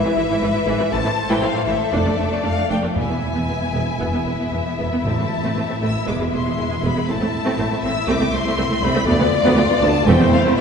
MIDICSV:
0, 0, Header, 1, 7, 480
1, 0, Start_track
1, 0, Key_signature, 0, "minor"
1, 0, Tempo, 503356
1, 880, Time_signature, 4, 2, 24, 8
1, 2327, Tempo, 519481
1, 5687, Tempo, 500835
1, 10029, End_track
2, 0, Start_track
2, 0, Title_t, "Violin section"
2, 0, Program_c, 0, 48
2, 0, Note_on_c, 0, 76, 119
2, 849, Note_off_c, 0, 76, 0
2, 877, Note_on_c, 0, 81, 119
2, 1236, Note_off_c, 0, 81, 0
2, 1240, Note_on_c, 0, 79, 107
2, 1349, Note_on_c, 0, 77, 108
2, 1358, Note_off_c, 0, 79, 0
2, 1590, Note_on_c, 0, 76, 95
2, 1593, Note_off_c, 0, 77, 0
2, 1829, Note_off_c, 0, 76, 0
2, 1838, Note_on_c, 0, 74, 93
2, 2081, Note_off_c, 0, 74, 0
2, 2082, Note_on_c, 0, 76, 86
2, 2323, Note_on_c, 0, 77, 108
2, 2327, Note_off_c, 0, 76, 0
2, 2560, Note_off_c, 0, 77, 0
2, 2567, Note_on_c, 0, 79, 86
2, 2641, Note_off_c, 0, 79, 0
2, 2807, Note_on_c, 0, 80, 106
2, 4464, Note_off_c, 0, 80, 0
2, 4740, Note_on_c, 0, 81, 91
2, 5414, Note_off_c, 0, 81, 0
2, 5454, Note_on_c, 0, 88, 93
2, 5682, Note_off_c, 0, 88, 0
2, 5689, Note_on_c, 0, 86, 89
2, 5766, Note_off_c, 0, 86, 0
2, 5929, Note_on_c, 0, 84, 89
2, 6401, Note_off_c, 0, 84, 0
2, 6417, Note_on_c, 0, 83, 102
2, 6652, Note_off_c, 0, 83, 0
2, 6655, Note_on_c, 0, 81, 106
2, 7368, Note_off_c, 0, 81, 0
2, 7369, Note_on_c, 0, 88, 107
2, 7600, Note_off_c, 0, 88, 0
2, 7610, Note_on_c, 0, 86, 114
2, 7844, Note_off_c, 0, 86, 0
2, 7850, Note_on_c, 0, 84, 117
2, 8320, Note_off_c, 0, 84, 0
2, 8324, Note_on_c, 0, 83, 127
2, 8558, Note_off_c, 0, 83, 0
2, 8561, Note_on_c, 0, 74, 127
2, 9260, Note_off_c, 0, 74, 0
2, 9277, Note_on_c, 0, 81, 127
2, 9516, Note_off_c, 0, 81, 0
2, 9518, Note_on_c, 0, 79, 115
2, 9760, Note_off_c, 0, 79, 0
2, 9761, Note_on_c, 0, 77, 115
2, 9838, Note_off_c, 0, 77, 0
2, 10029, End_track
3, 0, Start_track
3, 0, Title_t, "Violin section"
3, 0, Program_c, 1, 48
3, 0, Note_on_c, 1, 71, 85
3, 879, Note_off_c, 1, 71, 0
3, 883, Note_on_c, 1, 72, 86
3, 884, Note_on_c, 1, 69, 85
3, 1836, Note_on_c, 1, 74, 78
3, 1839, Note_off_c, 1, 72, 0
3, 2789, Note_off_c, 1, 74, 0
3, 2810, Note_off_c, 1, 69, 0
3, 2814, Note_on_c, 1, 64, 77
3, 2814, Note_on_c, 1, 76, 75
3, 6613, Note_off_c, 1, 64, 0
3, 6613, Note_off_c, 1, 76, 0
3, 6652, Note_on_c, 1, 64, 80
3, 6654, Note_on_c, 1, 76, 82
3, 8516, Note_off_c, 1, 64, 0
3, 8517, Note_off_c, 1, 76, 0
3, 8551, Note_on_c, 1, 74, 94
3, 8555, Note_on_c, 1, 65, 102
3, 9494, Note_off_c, 1, 74, 0
3, 9514, Note_on_c, 1, 64, 113
3, 9515, Note_off_c, 1, 65, 0
3, 9516, Note_on_c, 1, 72, 107
3, 9995, Note_off_c, 1, 72, 0
3, 10029, Note_off_c, 1, 64, 0
3, 10029, End_track
4, 0, Start_track
4, 0, Title_t, "Viola section"
4, 0, Program_c, 2, 48
4, 46, Note_on_c, 2, 64, 73
4, 47, Note_on_c, 2, 52, 87
4, 93, Note_off_c, 2, 64, 0
4, 94, Note_off_c, 2, 52, 0
4, 160, Note_on_c, 2, 52, 73
4, 162, Note_on_c, 2, 64, 82
4, 209, Note_off_c, 2, 52, 0
4, 210, Note_off_c, 2, 64, 0
4, 281, Note_on_c, 2, 64, 89
4, 282, Note_on_c, 2, 52, 98
4, 329, Note_off_c, 2, 64, 0
4, 330, Note_off_c, 2, 52, 0
4, 401, Note_on_c, 2, 52, 68
4, 402, Note_on_c, 2, 64, 67
4, 449, Note_off_c, 2, 52, 0
4, 450, Note_off_c, 2, 64, 0
4, 514, Note_on_c, 2, 52, 76
4, 517, Note_on_c, 2, 64, 83
4, 563, Note_off_c, 2, 52, 0
4, 566, Note_off_c, 2, 64, 0
4, 633, Note_on_c, 2, 52, 123
4, 633, Note_on_c, 2, 64, 95
4, 682, Note_off_c, 2, 52, 0
4, 682, Note_off_c, 2, 64, 0
4, 754, Note_on_c, 2, 52, 70
4, 754, Note_on_c, 2, 64, 65
4, 803, Note_off_c, 2, 52, 0
4, 803, Note_off_c, 2, 64, 0
4, 872, Note_on_c, 2, 64, 101
4, 874, Note_on_c, 2, 52, 86
4, 921, Note_off_c, 2, 64, 0
4, 923, Note_off_c, 2, 52, 0
4, 990, Note_on_c, 2, 52, 64
4, 992, Note_on_c, 2, 64, 69
4, 1040, Note_off_c, 2, 52, 0
4, 1041, Note_off_c, 2, 64, 0
4, 1235, Note_on_c, 2, 64, 100
4, 1236, Note_on_c, 2, 52, 105
4, 1283, Note_off_c, 2, 64, 0
4, 1284, Note_off_c, 2, 52, 0
4, 1355, Note_on_c, 2, 52, 59
4, 1356, Note_on_c, 2, 64, 66
4, 1404, Note_off_c, 2, 52, 0
4, 1404, Note_off_c, 2, 64, 0
4, 1474, Note_on_c, 2, 64, 68
4, 1476, Note_on_c, 2, 52, 78
4, 1523, Note_off_c, 2, 64, 0
4, 1524, Note_off_c, 2, 52, 0
4, 1590, Note_on_c, 2, 52, 86
4, 1593, Note_on_c, 2, 64, 83
4, 1639, Note_off_c, 2, 52, 0
4, 1642, Note_off_c, 2, 64, 0
4, 1832, Note_on_c, 2, 57, 89
4, 1832, Note_on_c, 2, 62, 98
4, 1882, Note_off_c, 2, 57, 0
4, 1882, Note_off_c, 2, 62, 0
4, 1953, Note_on_c, 2, 62, 65
4, 1957, Note_on_c, 2, 57, 65
4, 2003, Note_off_c, 2, 62, 0
4, 2006, Note_off_c, 2, 57, 0
4, 2074, Note_on_c, 2, 62, 75
4, 2075, Note_on_c, 2, 57, 70
4, 2124, Note_off_c, 2, 62, 0
4, 2125, Note_off_c, 2, 57, 0
4, 2198, Note_on_c, 2, 62, 82
4, 2199, Note_on_c, 2, 57, 98
4, 2248, Note_off_c, 2, 62, 0
4, 2249, Note_off_c, 2, 57, 0
4, 2318, Note_on_c, 2, 57, 57
4, 2318, Note_on_c, 2, 62, 52
4, 2368, Note_off_c, 2, 57, 0
4, 2368, Note_off_c, 2, 62, 0
4, 2439, Note_on_c, 2, 57, 66
4, 2442, Note_on_c, 2, 62, 69
4, 2488, Note_off_c, 2, 57, 0
4, 2491, Note_off_c, 2, 62, 0
4, 2558, Note_on_c, 2, 62, 94
4, 2559, Note_on_c, 2, 57, 103
4, 2608, Note_off_c, 2, 62, 0
4, 2609, Note_off_c, 2, 57, 0
4, 2682, Note_on_c, 2, 57, 65
4, 2682, Note_on_c, 2, 62, 59
4, 2731, Note_off_c, 2, 57, 0
4, 2731, Note_off_c, 2, 62, 0
4, 2806, Note_on_c, 2, 59, 72
4, 2855, Note_off_c, 2, 59, 0
4, 2924, Note_on_c, 2, 59, 54
4, 2973, Note_off_c, 2, 59, 0
4, 3165, Note_on_c, 2, 59, 75
4, 3215, Note_off_c, 2, 59, 0
4, 3289, Note_on_c, 2, 59, 55
4, 3292, Note_off_c, 2, 59, 0
4, 3292, Note_on_c, 2, 59, 63
4, 3341, Note_off_c, 2, 59, 0
4, 3409, Note_on_c, 2, 59, 64
4, 3459, Note_off_c, 2, 59, 0
4, 3530, Note_on_c, 2, 59, 80
4, 3532, Note_off_c, 2, 59, 0
4, 3532, Note_on_c, 2, 59, 81
4, 3581, Note_off_c, 2, 59, 0
4, 3766, Note_on_c, 2, 59, 89
4, 3768, Note_off_c, 2, 59, 0
4, 3768, Note_on_c, 2, 59, 84
4, 3818, Note_off_c, 2, 59, 0
4, 3891, Note_on_c, 2, 59, 53
4, 3941, Note_off_c, 2, 59, 0
4, 4009, Note_on_c, 2, 59, 62
4, 4010, Note_off_c, 2, 59, 0
4, 4010, Note_on_c, 2, 59, 57
4, 4060, Note_off_c, 2, 59, 0
4, 4128, Note_on_c, 2, 59, 85
4, 4129, Note_off_c, 2, 59, 0
4, 4129, Note_on_c, 2, 59, 67
4, 4178, Note_off_c, 2, 59, 0
4, 4255, Note_on_c, 2, 59, 55
4, 4256, Note_off_c, 2, 59, 0
4, 4256, Note_on_c, 2, 59, 58
4, 4304, Note_off_c, 2, 59, 0
4, 4380, Note_on_c, 2, 59, 68
4, 4428, Note_off_c, 2, 59, 0
4, 4495, Note_on_c, 2, 59, 94
4, 4496, Note_off_c, 2, 59, 0
4, 4496, Note_on_c, 2, 59, 81
4, 4545, Note_off_c, 2, 59, 0
4, 4621, Note_on_c, 2, 59, 60
4, 4622, Note_off_c, 2, 59, 0
4, 4622, Note_on_c, 2, 59, 53
4, 4670, Note_off_c, 2, 59, 0
4, 4739, Note_on_c, 2, 57, 76
4, 4742, Note_on_c, 2, 60, 66
4, 4787, Note_off_c, 2, 57, 0
4, 4789, Note_off_c, 2, 60, 0
4, 4859, Note_on_c, 2, 57, 44
4, 4860, Note_on_c, 2, 60, 51
4, 4907, Note_off_c, 2, 57, 0
4, 4908, Note_off_c, 2, 60, 0
4, 5097, Note_on_c, 2, 60, 75
4, 5098, Note_on_c, 2, 57, 76
4, 5144, Note_off_c, 2, 60, 0
4, 5145, Note_off_c, 2, 57, 0
4, 5209, Note_on_c, 2, 57, 65
4, 5210, Note_on_c, 2, 60, 52
4, 5257, Note_off_c, 2, 57, 0
4, 5258, Note_off_c, 2, 60, 0
4, 5329, Note_on_c, 2, 60, 58
4, 5330, Note_on_c, 2, 57, 59
4, 5377, Note_off_c, 2, 57, 0
4, 5377, Note_off_c, 2, 60, 0
4, 5443, Note_on_c, 2, 57, 78
4, 5446, Note_on_c, 2, 60, 74
4, 5492, Note_off_c, 2, 57, 0
4, 5494, Note_off_c, 2, 60, 0
4, 5672, Note_on_c, 2, 59, 74
4, 5674, Note_on_c, 2, 56, 88
4, 5723, Note_off_c, 2, 59, 0
4, 5724, Note_off_c, 2, 56, 0
4, 5798, Note_on_c, 2, 56, 59
4, 5798, Note_on_c, 2, 59, 61
4, 5848, Note_off_c, 2, 56, 0
4, 5848, Note_off_c, 2, 59, 0
4, 5918, Note_on_c, 2, 59, 68
4, 5922, Note_on_c, 2, 56, 63
4, 5968, Note_off_c, 2, 59, 0
4, 5972, Note_off_c, 2, 56, 0
4, 6036, Note_on_c, 2, 59, 82
4, 6038, Note_on_c, 2, 56, 72
4, 6087, Note_off_c, 2, 59, 0
4, 6088, Note_off_c, 2, 56, 0
4, 6162, Note_on_c, 2, 59, 58
4, 6163, Note_on_c, 2, 56, 70
4, 6211, Note_off_c, 2, 59, 0
4, 6213, Note_off_c, 2, 56, 0
4, 6279, Note_on_c, 2, 59, 69
4, 6280, Note_on_c, 2, 56, 65
4, 6329, Note_off_c, 2, 59, 0
4, 6330, Note_off_c, 2, 56, 0
4, 6401, Note_on_c, 2, 59, 96
4, 6402, Note_on_c, 2, 56, 83
4, 6450, Note_off_c, 2, 59, 0
4, 6451, Note_off_c, 2, 56, 0
4, 6525, Note_on_c, 2, 59, 68
4, 6527, Note_on_c, 2, 56, 54
4, 6573, Note_off_c, 2, 59, 0
4, 6575, Note_off_c, 2, 56, 0
4, 6645, Note_on_c, 2, 57, 93
4, 6646, Note_on_c, 2, 60, 89
4, 6693, Note_off_c, 2, 57, 0
4, 6694, Note_off_c, 2, 60, 0
4, 6768, Note_on_c, 2, 57, 62
4, 6768, Note_on_c, 2, 60, 59
4, 6816, Note_off_c, 2, 57, 0
4, 6816, Note_off_c, 2, 60, 0
4, 7005, Note_on_c, 2, 57, 100
4, 7005, Note_on_c, 2, 60, 98
4, 7053, Note_off_c, 2, 57, 0
4, 7053, Note_off_c, 2, 60, 0
4, 7124, Note_on_c, 2, 60, 57
4, 7127, Note_on_c, 2, 57, 64
4, 7172, Note_off_c, 2, 60, 0
4, 7175, Note_off_c, 2, 57, 0
4, 7248, Note_on_c, 2, 57, 67
4, 7251, Note_on_c, 2, 60, 76
4, 7295, Note_off_c, 2, 57, 0
4, 7297, Note_off_c, 2, 60, 0
4, 7368, Note_on_c, 2, 57, 93
4, 7368, Note_on_c, 2, 60, 100
4, 7415, Note_off_c, 2, 57, 0
4, 7415, Note_off_c, 2, 60, 0
4, 7605, Note_on_c, 2, 57, 112
4, 7607, Note_on_c, 2, 60, 96
4, 7652, Note_off_c, 2, 57, 0
4, 7654, Note_off_c, 2, 60, 0
4, 7723, Note_on_c, 2, 57, 80
4, 7724, Note_on_c, 2, 60, 69
4, 7770, Note_off_c, 2, 57, 0
4, 7771, Note_off_c, 2, 60, 0
4, 7840, Note_on_c, 2, 60, 67
4, 7844, Note_on_c, 2, 57, 78
4, 7888, Note_off_c, 2, 60, 0
4, 7891, Note_off_c, 2, 57, 0
4, 7961, Note_on_c, 2, 60, 107
4, 7963, Note_on_c, 2, 57, 112
4, 8008, Note_off_c, 2, 60, 0
4, 8010, Note_off_c, 2, 57, 0
4, 8078, Note_on_c, 2, 57, 72
4, 8081, Note_on_c, 2, 60, 75
4, 8125, Note_off_c, 2, 57, 0
4, 8128, Note_off_c, 2, 60, 0
4, 8192, Note_on_c, 2, 57, 89
4, 8192, Note_on_c, 2, 60, 79
4, 8240, Note_off_c, 2, 60, 0
4, 8241, Note_off_c, 2, 57, 0
4, 8317, Note_on_c, 2, 57, 115
4, 8319, Note_on_c, 2, 60, 127
4, 8364, Note_off_c, 2, 57, 0
4, 8366, Note_off_c, 2, 60, 0
4, 8433, Note_on_c, 2, 60, 89
4, 8435, Note_on_c, 2, 57, 92
4, 8481, Note_off_c, 2, 60, 0
4, 8482, Note_off_c, 2, 57, 0
4, 8555, Note_on_c, 2, 59, 112
4, 8557, Note_off_c, 2, 59, 0
4, 8557, Note_on_c, 2, 59, 112
4, 8604, Note_off_c, 2, 59, 0
4, 8678, Note_on_c, 2, 59, 73
4, 8724, Note_off_c, 2, 59, 0
4, 8915, Note_on_c, 2, 59, 124
4, 8962, Note_off_c, 2, 59, 0
4, 9036, Note_on_c, 2, 59, 90
4, 9083, Note_off_c, 2, 59, 0
4, 9155, Note_on_c, 2, 59, 85
4, 9157, Note_off_c, 2, 59, 0
4, 9157, Note_on_c, 2, 59, 80
4, 9204, Note_off_c, 2, 59, 0
4, 9276, Note_on_c, 2, 59, 115
4, 9324, Note_off_c, 2, 59, 0
4, 9518, Note_on_c, 2, 60, 101
4, 9519, Note_on_c, 2, 57, 112
4, 9566, Note_off_c, 2, 60, 0
4, 9567, Note_off_c, 2, 57, 0
4, 9638, Note_on_c, 2, 60, 96
4, 9641, Note_on_c, 2, 57, 91
4, 9686, Note_off_c, 2, 60, 0
4, 9689, Note_off_c, 2, 57, 0
4, 9760, Note_on_c, 2, 57, 102
4, 9762, Note_on_c, 2, 60, 80
4, 9809, Note_off_c, 2, 57, 0
4, 9810, Note_off_c, 2, 60, 0
4, 9885, Note_on_c, 2, 60, 112
4, 9888, Note_on_c, 2, 57, 97
4, 9933, Note_off_c, 2, 60, 0
4, 9935, Note_off_c, 2, 57, 0
4, 10029, End_track
5, 0, Start_track
5, 0, Title_t, "Cello section"
5, 0, Program_c, 3, 48
5, 36, Note_on_c, 3, 44, 67
5, 85, Note_off_c, 3, 44, 0
5, 154, Note_on_c, 3, 44, 63
5, 203, Note_off_c, 3, 44, 0
5, 277, Note_on_c, 3, 44, 93
5, 326, Note_off_c, 3, 44, 0
5, 393, Note_on_c, 3, 44, 72
5, 442, Note_off_c, 3, 44, 0
5, 515, Note_on_c, 3, 44, 60
5, 564, Note_off_c, 3, 44, 0
5, 634, Note_on_c, 3, 44, 88
5, 683, Note_off_c, 3, 44, 0
5, 754, Note_on_c, 3, 44, 67
5, 803, Note_off_c, 3, 44, 0
5, 874, Note_on_c, 3, 45, 93
5, 923, Note_off_c, 3, 45, 0
5, 998, Note_on_c, 3, 45, 77
5, 1046, Note_off_c, 3, 45, 0
5, 1239, Note_on_c, 3, 45, 89
5, 1286, Note_off_c, 3, 45, 0
5, 1353, Note_on_c, 3, 45, 72
5, 1402, Note_off_c, 3, 45, 0
5, 1474, Note_on_c, 3, 45, 70
5, 1522, Note_off_c, 3, 45, 0
5, 1598, Note_on_c, 3, 45, 85
5, 1646, Note_off_c, 3, 45, 0
5, 1834, Note_on_c, 3, 41, 89
5, 1883, Note_off_c, 3, 41, 0
5, 1956, Note_on_c, 3, 41, 64
5, 2005, Note_off_c, 3, 41, 0
5, 2082, Note_on_c, 3, 41, 61
5, 2131, Note_off_c, 3, 41, 0
5, 2205, Note_on_c, 3, 41, 81
5, 2254, Note_off_c, 3, 41, 0
5, 2324, Note_on_c, 3, 41, 67
5, 2373, Note_off_c, 3, 41, 0
5, 2444, Note_on_c, 3, 41, 52
5, 2493, Note_off_c, 3, 41, 0
5, 2564, Note_on_c, 3, 41, 76
5, 2612, Note_off_c, 3, 41, 0
5, 2683, Note_on_c, 3, 41, 55
5, 2732, Note_off_c, 3, 41, 0
5, 2803, Note_on_c, 3, 40, 74
5, 2853, Note_off_c, 3, 40, 0
5, 2925, Note_on_c, 3, 40, 60
5, 2974, Note_off_c, 3, 40, 0
5, 3166, Note_on_c, 3, 40, 77
5, 3215, Note_off_c, 3, 40, 0
5, 3291, Note_on_c, 3, 40, 64
5, 3339, Note_off_c, 3, 40, 0
5, 3413, Note_on_c, 3, 40, 56
5, 3462, Note_off_c, 3, 40, 0
5, 3534, Note_on_c, 3, 40, 79
5, 3582, Note_off_c, 3, 40, 0
5, 3777, Note_on_c, 3, 40, 78
5, 3826, Note_off_c, 3, 40, 0
5, 3898, Note_on_c, 3, 40, 60
5, 3946, Note_off_c, 3, 40, 0
5, 4019, Note_on_c, 3, 40, 53
5, 4067, Note_off_c, 3, 40, 0
5, 4138, Note_on_c, 3, 40, 87
5, 4186, Note_off_c, 3, 40, 0
5, 4258, Note_on_c, 3, 40, 60
5, 4306, Note_off_c, 3, 40, 0
5, 4377, Note_on_c, 3, 40, 57
5, 4426, Note_off_c, 3, 40, 0
5, 4505, Note_on_c, 3, 40, 67
5, 4552, Note_off_c, 3, 40, 0
5, 4621, Note_on_c, 3, 40, 50
5, 4669, Note_off_c, 3, 40, 0
5, 4743, Note_on_c, 3, 45, 79
5, 4790, Note_off_c, 3, 45, 0
5, 4865, Note_on_c, 3, 45, 59
5, 4912, Note_off_c, 3, 45, 0
5, 5094, Note_on_c, 3, 45, 71
5, 5142, Note_off_c, 3, 45, 0
5, 5212, Note_on_c, 3, 45, 68
5, 5260, Note_off_c, 3, 45, 0
5, 5333, Note_on_c, 3, 45, 61
5, 5380, Note_off_c, 3, 45, 0
5, 5451, Note_on_c, 3, 45, 82
5, 5498, Note_off_c, 3, 45, 0
5, 5679, Note_on_c, 3, 40, 82
5, 5729, Note_off_c, 3, 40, 0
5, 5804, Note_on_c, 3, 40, 63
5, 5853, Note_off_c, 3, 40, 0
5, 5921, Note_on_c, 3, 40, 61
5, 5970, Note_off_c, 3, 40, 0
5, 6048, Note_on_c, 3, 40, 77
5, 6097, Note_off_c, 3, 40, 0
5, 6171, Note_on_c, 3, 40, 67
5, 6219, Note_off_c, 3, 40, 0
5, 6293, Note_on_c, 3, 40, 55
5, 6340, Note_off_c, 3, 40, 0
5, 6411, Note_on_c, 3, 40, 80
5, 6459, Note_off_c, 3, 40, 0
5, 6531, Note_on_c, 3, 40, 57
5, 6579, Note_off_c, 3, 40, 0
5, 6650, Note_on_c, 3, 45, 88
5, 6697, Note_off_c, 3, 45, 0
5, 6769, Note_on_c, 3, 45, 67
5, 6816, Note_off_c, 3, 45, 0
5, 7004, Note_on_c, 3, 45, 97
5, 7052, Note_off_c, 3, 45, 0
5, 7126, Note_on_c, 3, 45, 66
5, 7174, Note_off_c, 3, 45, 0
5, 7248, Note_on_c, 3, 45, 69
5, 7295, Note_off_c, 3, 45, 0
5, 7367, Note_on_c, 3, 45, 92
5, 7414, Note_off_c, 3, 45, 0
5, 7602, Note_on_c, 3, 36, 102
5, 7650, Note_off_c, 3, 36, 0
5, 7725, Note_on_c, 3, 36, 71
5, 7772, Note_off_c, 3, 36, 0
5, 7846, Note_on_c, 3, 36, 70
5, 7892, Note_off_c, 3, 36, 0
5, 7965, Note_on_c, 3, 36, 99
5, 8011, Note_off_c, 3, 36, 0
5, 8083, Note_on_c, 3, 36, 72
5, 8129, Note_off_c, 3, 36, 0
5, 8199, Note_on_c, 3, 36, 68
5, 8246, Note_off_c, 3, 36, 0
5, 8318, Note_on_c, 3, 36, 100
5, 8365, Note_off_c, 3, 36, 0
5, 8438, Note_on_c, 3, 36, 77
5, 8485, Note_off_c, 3, 36, 0
5, 8556, Note_on_c, 3, 38, 116
5, 8603, Note_off_c, 3, 38, 0
5, 8679, Note_on_c, 3, 38, 87
5, 8725, Note_off_c, 3, 38, 0
5, 8913, Note_on_c, 3, 38, 123
5, 8961, Note_off_c, 3, 38, 0
5, 9030, Note_on_c, 3, 38, 93
5, 9078, Note_off_c, 3, 38, 0
5, 9154, Note_on_c, 3, 38, 94
5, 9201, Note_off_c, 3, 38, 0
5, 9275, Note_on_c, 3, 38, 120
5, 9323, Note_off_c, 3, 38, 0
5, 9514, Note_on_c, 3, 40, 123
5, 9563, Note_off_c, 3, 40, 0
5, 9634, Note_on_c, 3, 40, 86
5, 9684, Note_off_c, 3, 40, 0
5, 9758, Note_on_c, 3, 40, 76
5, 9807, Note_off_c, 3, 40, 0
5, 9880, Note_on_c, 3, 40, 112
5, 9929, Note_off_c, 3, 40, 0
5, 10029, End_track
6, 0, Start_track
6, 0, Title_t, "Timpani"
6, 0, Program_c, 4, 47
6, 2806, Note_on_c, 4, 40, 91
6, 3497, Note_off_c, 4, 40, 0
6, 4740, Note_on_c, 4, 45, 104
6, 5414, Note_off_c, 4, 45, 0
6, 5687, Note_on_c, 4, 40, 104
6, 6372, Note_off_c, 4, 40, 0
6, 10029, End_track
7, 0, Start_track
7, 0, Title_t, "Double bass section"
7, 0, Program_c, 5, 48
7, 158, Note_on_c, 5, 32, 73
7, 207, Note_off_c, 5, 32, 0
7, 399, Note_on_c, 5, 32, 66
7, 448, Note_off_c, 5, 32, 0
7, 636, Note_on_c, 5, 32, 110
7, 685, Note_off_c, 5, 32, 0
7, 881, Note_on_c, 5, 33, 104
7, 928, Note_off_c, 5, 33, 0
7, 1360, Note_on_c, 5, 33, 65
7, 1407, Note_off_c, 5, 33, 0
7, 1597, Note_on_c, 5, 33, 100
7, 1645, Note_off_c, 5, 33, 0
7, 1834, Note_on_c, 5, 29, 96
7, 1883, Note_off_c, 5, 29, 0
7, 2077, Note_on_c, 5, 29, 67
7, 2127, Note_off_c, 5, 29, 0
7, 2321, Note_on_c, 5, 29, 63
7, 2370, Note_off_c, 5, 29, 0
7, 2564, Note_on_c, 5, 29, 90
7, 2613, Note_off_c, 5, 29, 0
7, 2804, Note_on_c, 5, 28, 75
7, 2853, Note_off_c, 5, 28, 0
7, 3288, Note_on_c, 5, 28, 53
7, 3338, Note_off_c, 5, 28, 0
7, 3532, Note_on_c, 5, 28, 90
7, 3581, Note_off_c, 5, 28, 0
7, 3775, Note_on_c, 5, 28, 91
7, 3824, Note_off_c, 5, 28, 0
7, 4016, Note_on_c, 5, 28, 61
7, 4064, Note_off_c, 5, 28, 0
7, 4256, Note_on_c, 5, 28, 62
7, 4304, Note_off_c, 5, 28, 0
7, 4499, Note_on_c, 5, 28, 92
7, 4547, Note_off_c, 5, 28, 0
7, 4740, Note_on_c, 5, 33, 84
7, 4787, Note_off_c, 5, 33, 0
7, 5216, Note_on_c, 5, 33, 58
7, 5263, Note_off_c, 5, 33, 0
7, 5449, Note_on_c, 5, 33, 91
7, 5496, Note_off_c, 5, 33, 0
7, 5685, Note_on_c, 5, 28, 93
7, 5734, Note_off_c, 5, 28, 0
7, 5929, Note_on_c, 5, 28, 58
7, 5977, Note_off_c, 5, 28, 0
7, 6174, Note_on_c, 5, 28, 62
7, 6221, Note_off_c, 5, 28, 0
7, 6416, Note_on_c, 5, 28, 105
7, 6463, Note_off_c, 5, 28, 0
7, 6656, Note_on_c, 5, 33, 84
7, 6702, Note_off_c, 5, 33, 0
7, 7132, Note_on_c, 5, 33, 64
7, 7178, Note_off_c, 5, 33, 0
7, 7369, Note_on_c, 5, 33, 93
7, 7416, Note_off_c, 5, 33, 0
7, 7604, Note_on_c, 5, 36, 109
7, 7651, Note_off_c, 5, 36, 0
7, 7841, Note_on_c, 5, 36, 74
7, 7888, Note_off_c, 5, 36, 0
7, 8081, Note_on_c, 5, 36, 82
7, 8128, Note_off_c, 5, 36, 0
7, 8312, Note_on_c, 5, 36, 127
7, 8360, Note_off_c, 5, 36, 0
7, 8548, Note_on_c, 5, 38, 116
7, 8597, Note_off_c, 5, 38, 0
7, 9027, Note_on_c, 5, 38, 75
7, 9076, Note_off_c, 5, 38, 0
7, 9266, Note_on_c, 5, 38, 120
7, 9315, Note_off_c, 5, 38, 0
7, 9507, Note_on_c, 5, 28, 127
7, 9557, Note_off_c, 5, 28, 0
7, 9750, Note_on_c, 5, 28, 77
7, 9801, Note_off_c, 5, 28, 0
7, 10029, End_track
0, 0, End_of_file